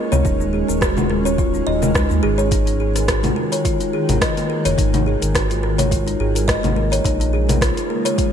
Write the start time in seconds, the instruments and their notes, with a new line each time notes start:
Already playing: ambient pad G#3 C#4
0.12 analog synth bass C#2, kalimba C#5, low conga, cabasa
0.25 analog synth bass D#1, kalimba D#4, kick, cabasa
0.40 kalimba D#4, cabasa
0.53 kalimba G#4
0.68 analog synth bass D#1, kalimba A#4, cabasa
0.81 kalimba F#4, kick, cross-stick, cabasa
0.97 kalimba F4, low conga, cabasa
1.10 kalimba A#4, cross-stick
1.25 kalimba C#5, cabasa
1.38 kalimba F4, kick, cabasa
1.54 kalimba D#4, cabasa
1.67 analog synth bass D#1, kalimba D#5
1.82 kalimba A#4, low conga, cabasa
1.95 analog synth bass C#2, kalimba D#4, kick, cross-stick, cabasa
2.10 analog synth bass D#2, kalimba D#4, cabasa
2.23 analog synth bass G#1, kalimba G#4
2.38 kalimba C#5, cabasa
2.51 ambient pad D#3, kalimba D#4, kick, open hi-hat, cabasa
2.67 kalimba D#4, open hi-hat, cabasa
2.80 kalimba G#4
2.95 kalimba A#4, cross-stick, open hi-hat, cabasa
3.08 kalimba F#4, kick, cross-stick, open hi-hat, cabasa
3.23 kalimba F4, open hi-hat, low conga, cabasa
3.36 kalimba A#4
3.52 kalimba C#5, open hi-hat, cabasa
3.65 kalimba F4, kick, open hi-hat, cabasa
3.80 kalimba D#4, open hi-hat, cabasa
3.93 kalimba G#4
4.09 analog synth bass G#1, kalimba A#4, open hi-hat, low conga, cabasa
4.21 kalimba D#5, kick, cross-stick, open hi-hat, cabasa
4.37 kalimba A#3, open hi-hat, cabasa
4.50 kalimba A#4
4.65 analog synth bass F#1, kalimba C#5, open hi-hat, cabasa
4.78 analog synth bass G#1, kalimba D#4, kick, open hi-hat, cabasa
4.93 kalimba D#4, open hi-hat, low conga, cabasa
5.06 kalimba G#4
5.22 analog synth bass G#1, kalimba A#4, open hi-hat, cabasa
5.35 kalimba F#4, kick, cross-stick, open hi-hat, cabasa
5.50 kalimba F4, open hi-hat, cabasa
5.63 kalimba A#4, cross-stick
5.78 kalimba C#5, open hi-hat, low conga, cabasa
5.91 kalimba F4, kick, open hi-hat, cabasa
6.07 kalimba D#4, open hi-hat, cabasa
6.20 analog synth bass G#1, kalimba G#4
6.35 kalimba A#4, open hi-hat, cabasa
6.48 kalimba D#5, kick, cross-stick, open hi-hat, cabasa
6.63 analog synth bass G#1, kalimba A#3, open hi-hat, low conga, cabasa
6.76 kalimba A#4
6.92 kalimba C#5, open hi-hat, cabasa
7.04 analog synth bass A#1, ambient pad C#3 G#3 A#3 F4, kalimba D#4, kick, open hi-hat, cabasa
7.20 kalimba D#4, open hi-hat, cabasa
7.33 kalimba G#4
7.49 kalimba A#4, cross-stick, open hi-hat, low conga, cabasa
7.61 kalimba F4, kick, cross-stick, open hi-hat, cabasa
7.77 kalimba F4, open hi-hat, cabasa
7.90 kalimba A#4
8.05 kalimba C#5, open hi-hat, cabasa
8.18 kalimba F4, kick, open hi-hat, cabasa